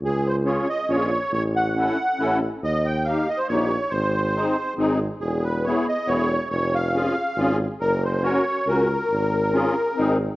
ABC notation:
X:1
M:3/4
L:1/16
Q:"Swing" 1/4=139
K:Db
V:1 name="Accordion"
A2 c2 d2 e2 d4 | ^c2 ^f8 z2 | e2 =g2 f2 e c d4 | c8 z4 |
^G2 =B2 d2 e2 d4 | d2 f8 z2 | B2 c2 d4 B4- | B8- B2 z2 |]
V:2 name="Accordion"
z4 [DFA]2 z2 [DFA]2 z2 | z4 [^C=E=A]2 z2 [CEA]2 z2 | z4 [B,E=G]2 z2 [B,EG]2 z2 | z4 [CEA]2 z2 [CEA]2 z2 |
z4 [=B,=E^G]2 z2 [B,EG]2 z2 | z4 [DFA]2 z2 [DFA]2 z2 | z4 [DGB]2 z2 [DGB]2 z2 | z4 [DFA]2 z2 [CEA]2 z2 |]
V:3 name="Tuba" clef=bass
D,,8 B,,,4 | =A,,,8 A,,,4 | E,,8 B,,,4 | A,,,8 A,,,4 |
=E,,,8 E,,,4 | F,,,8 A,,,4 | G,,,8 D,,4 | A,,,8 A,,,4 |]